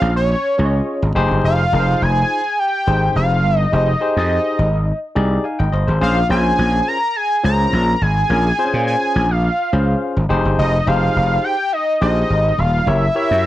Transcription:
Already playing: C#4 F4 G#4 C5 F5
0.01 A#1
0.16 C#5
0.58 C#2 C#4 F4 G#4 C#5
0.65 D#5
1.02 G#1
1.15 F1 D#4 G4 G#4 C5
1.31 G1
1.44 F1 F5
1.73 F1 D#4 F4 G#4 A#4
1.80 C5
2.02 F1 G#5
2.59 G5
2.87 G#1 D#4 G4 G#4 C5
3.16 F1 F5
3.44 G1
3.57 D#5
3.72 F1 D#4 G4 G#4 C5 D#5
4.01 D#4 G4 G#4 C5
4.17 F2 D#5
4.59 G#1
5.15 C2 D#4 G4 G#4 D5
5.44 F5 G#5
5.59 G#1 D#5 G5
5.72 G1 C5 D#5
5.87 G#1 G#4 C5
6.01 A#1 C#4 F4 G#4 C5 F5
6.30 A#1 C#4 F4 G#4 C5 G#5
6.59 A#1
6.88 A#5
7.16 G#5
7.43 C#2 C#4 F4 G#4 C5 A#5
7.73 A#1
8.01 G#1 G#5
8.29 A#1 C#4 F4 G#4 A#4
8.58 C4 F4 G#4 C5
8.65 C#4
8.74 A#2
8.87 G#5
9.16 A#1
9.31 F5
9.72 C#2 C#4 F4 G#4 C5
10.17 G#1
10.29 F1 D#4 G4 G#4 C5
10.45 G1
10.59 F1 D#5
10.87 F1 D#4 G4 G#4 C5 F5
11.16 F1
11.44 G5
11.73 D#5
12.01 A#1 D#4 G4 G#4 C5 D#5
12.30 G#1
12.58 D#1 F5
12.86 F#1 E4 G4 A#4 C#5 E5
13.15 E4 G4 A#4 C#5
13.31 F#2

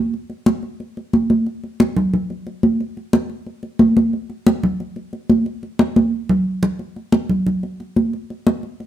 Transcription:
0.14 high conga
0.30 high conga
0.46 high conga
0.63 high conga
0.80 high conga
0.97 high conga
1.13 high conga
1.30 high conga
1.46 high conga
1.64 high conga
1.80 high conga
1.97 high conga, low conga
2.14 high conga, low conga
2.30 high conga
2.47 high conga
2.63 high conga
2.80 high conga
2.97 high conga
3.13 high conga
3.29 high conga
3.46 high conga
3.63 high conga
3.79 high conga
3.97 high conga
4.13 high conga
4.30 high conga
4.47 high conga
4.63 high conga, low conga
4.80 high conga
4.96 high conga
5.13 high conga
5.30 high conga
5.46 high conga
5.63 high conga
5.79 high conga
5.96 high conga
6.29 low conga
6.63 low conga
6.79 high conga
6.96 high conga
7.12 high conga
7.29 high conga, low conga
7.46 high conga, low conga
7.63 high conga
7.80 high conga
7.96 high conga
8.13 high conga
8.30 high conga
8.47 high conga
8.63 high conga
8.80 high conga

